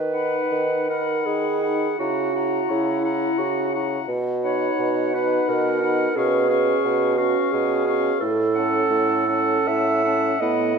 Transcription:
0.00 0.43 D#3 soft
0.00 0.91 B4 medium
0.13 0.87 D#4 soft
0.13 0.87 F#5 soft
0.13 0.87 B5 soft
0.51 1.17 D#3 medium
0.89 1.62 D#4 soft
0.89 1.28 A#4 medium
0.89 1.62 F#5 soft
0.89 1.62 B5 soft
1.26 1.91 D#3 soft
1.26 1.98 G#4 medium
1.62 1.98 D#4 soft
1.62 1.98 F#5 soft
1.62 1.99 B5 soft
1.98 2.62 C#3 medium
1.98 2.33 E4 soft
1.98 2.72 F#4 medium
1.98 2.35 F#5 soft
1.98 2.34 A#5 soft
2.34 3.02 E4 soft
2.34 3.03 F#5 soft
2.34 3.03 A#5 soft
2.70 3.31 C#3 medium
2.70 3.40 E4 medium
3.04 3.72 E4 soft
3.04 3.72 F#5 soft
3.04 3.72 A#5 soft
3.38 4.00 C#3 soft
3.38 3.73 F#4 medium
3.73 4.07 E4 soft
3.73 4.08 F#5 soft
3.73 4.08 A#5 soft
4.08 4.71 B2 medium
4.44 5.14 D#4 soft
4.44 5.16 C#5 medium
4.44 5.13 F#5 soft
4.44 5.13 B5 soft
4.79 5.41 B2 medium
5.15 5.82 D#4 soft
5.15 5.50 B4 medium
5.15 5.82 F#5 soft
5.15 5.82 B5 soft
5.48 6.09 B2 medium
5.48 6.18 A#4 medium
5.82 6.15 D#4 soft
5.82 6.16 F#5 soft
5.82 6.16 B5 soft
6.16 6.76 B2 medium
6.16 6.49 C#4 soft
6.16 7.19 G#4 medium
6.16 6.49 F5 soft
6.16 6.50 C#6 soft
6.50 7.17 C#4 soft
6.50 7.17 F5 soft
6.50 7.17 C#6 soft
6.85 7.37 B2 medium
7.18 7.86 C#4 soft
7.18 7.53 F#4 medium
7.18 7.86 F5 medium
7.18 7.87 C#6 medium
7.52 8.14 B2 medium
7.52 8.20 G#4 medium
7.87 8.21 C#4 soft
7.87 8.20 F5 medium
7.87 8.21 C#6 soft
8.21 8.83 A2 medium
8.21 9.69 A4 medium
8.55 9.28 C#4 soft
8.55 9.27 F#5 soft
8.55 9.28 A5 soft
8.91 9.59 A2 medium
9.28 10.04 C#4 soft
9.28 10.04 F#5 soft
9.28 10.04 A5 soft
9.68 10.33 A2 medium
9.68 10.42 E5 medium
10.05 10.41 C#4 soft
10.05 10.40 F#5 soft
10.05 10.41 A5 soft
10.41 10.79 A2 medium
10.41 10.77 B3 medium
10.41 10.79 D#5 medium
10.41 10.76 F#5 soft
10.41 10.76 B5 soft

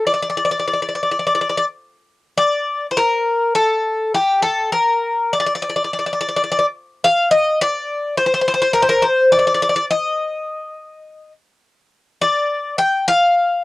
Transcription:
0.07 0.13 D5 medium
0.14 0.21 D5 medium
0.22 0.29 D5 medium
0.30 0.36 D5 medium
0.37 0.44 D5 medium
0.45 0.50 D5 medium
0.51 0.58 D5 medium
0.60 0.66 D5 soft
0.68 0.72 D5 medium
0.73 0.81 D5 soft
0.82 0.87 D5 soft
0.89 0.94 D5 soft
0.95 1.02 D5 medium
1.03 1.10 D5 soft
1.11 1.18 D5 medium
1.19 1.25 D5 soft
1.27 1.34 D5 medium
1.35 1.40 D5 medium
1.41 1.48 D5 medium
1.49 1.56 D5 medium
1.57 1.64 D5 medium
2.38 2.86 D5 loud
2.91 2.98 C5 medium
2.97 3.54 A#4 loud
3.55 4.14 A4 medium
4.14 4.42 G4 medium
4.42 4.69 A4 medium
4.72 5.32 A#4 medium
5.33 5.38 D5 medium
5.40 5.45 D5 medium
5.46 5.53 D5 medium
5.55 5.61 D5 medium
5.62 5.68 D5 medium
5.70 5.75 D5 medium
5.76 5.82 D5 medium
5.84 5.90 D5 medium
5.93 5.98 D5 medium
5.99 6.05 D5 medium
6.06 6.12 D5 medium
6.13 6.20 D5 soft
6.21 6.27 D5 medium
6.29 6.35 D5 medium
6.37 6.43 D5 medium
6.44 6.50 D5 medium
6.52 6.58 D5 medium
6.59 6.65 D5 medium
7.04 7.31 F5 loud
7.31 7.59 D#5 medium
7.61 8.15 D5 loud
8.17 8.25 C5 medium
8.26 8.33 C5 medium
8.34 8.40 C5 medium
8.41 8.47 C5 medium
8.48 8.53 C5 medium
8.54 8.61 C5 medium
8.62 8.71 C5 medium
8.73 8.82 A#4 loud
8.82 8.90 C5 medium
8.89 9.04 A#4 loud
9.02 9.31 C5 medium
9.32 9.38 D5 loud
9.39 9.46 D5 medium
9.47 9.53 D5 medium
9.54 9.61 D5 medium
9.62 9.68 D5 medium
9.69 9.75 D5 medium
9.76 9.85 D5 medium
9.91 11.32 D#5 medium
12.21 12.76 D5 medium
12.78 13.06 G5 loud
13.08 13.62 F5 loud

